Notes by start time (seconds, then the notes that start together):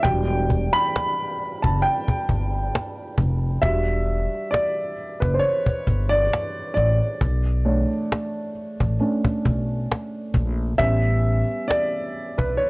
0.03 E1 F#3 G3 D4 G5, cajon bass
0.50 cajon bass
0.73 B5, cajon slap
0.96 cajon slap
1.39 cajon slap
1.62 F#1 A5, cajon bass
1.82 G5, cajon slap
2.08 muted upright bass stroke, cajon bass
2.29 G1, cajon bass
2.75 cajon slap
3.18 F1, cajon bass
3.61 E1 G3 D4 F#4 E5, cajon bass
4.07 cajon slap
4.35 cajon slap
4.51 D5, cajon slap
4.97 cajon slap
5.20 F#1 B4, cajon bass
5.34 C5
5.39 C#5, cajon slap
5.66 muted upright bass stroke, cajon bass
5.87 G1, cajon bass
6.09 D5
6.33 cajon slap
6.74 A1 D5, cajon slap
7.21 B1, cajon bass
7.65 A3 D4 C#5, cajon slap
7.93 cajon slap
8.12 cajon slap
8.55 cajon slap
8.80 A1, cajon bass
9.00 A3 C#4 D4, cajon slap
9.25 muted upright bass stroke, cajon bass
9.45 B1, cajon bass
9.92 cajon slap
10.34 A#1, cajon bass
10.78 A1 G3 B3 C#4 E5, cajon bass
11.23 cajon slap
11.51 cajon slap
11.68 D5, cajon slap
12.13 cajon slap
12.38 B1 B4, cajon bass
12.57 C#5, cajon slap